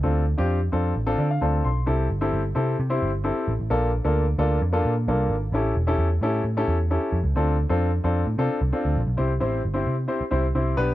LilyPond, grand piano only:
\new Staff \with { instrumentName = "Grand piano" } { \time 4/4 \key d \minor \tempo 4 = 131 << { r2 r8 d''16 f''16 a''8 c'''8 | r1 | r1 | r1 |
r1 | \key c \major r1 | } \\ { <c' d' f' a'>8 r16 <c' d' f' g'>8 r16 <c' d' f' a'>8 r16 <c' d' f' a'>8 r16 <c' d' f' a'>8 r8 | <c' e' g' a'>8 r16 <c' e' g' a'>8 r16 <c' e' g' a'>8 r16 <c' e' g' c''>8 r16 <c' e' g' a'>8 r8 | <bes d' f' a'>8 r16 <bes d' f' a'>8 r16 <bes d' f' a'>8 r16 <bes d' f' a'>8 r16 <bes d' f' a'>8 r8 | <cis' e' g' a'>8 r16 <cis' e' g' a'>8 r16 <cis' e' g' a'>8 r16 <cis' e' g' a'>8 r16 <cis' e' g' a'>8 r8 |
<c' d' f' a'>8 r16 <c' d' f' a'>8 r16 <c' d' f' a'>8 r16 <c' d' f' a'>8 r16 <c' d' f' a'>8 r8 | <c' e' g' c''>16 r16 <c' e' g' c''>8 r16 <c' e' g' c''>8 r16 <c' e' g' c''>16 r16 <c' e' g' c''>16 r16 <c' e' g' c''>8 <b d' g' b'>8 | } >> }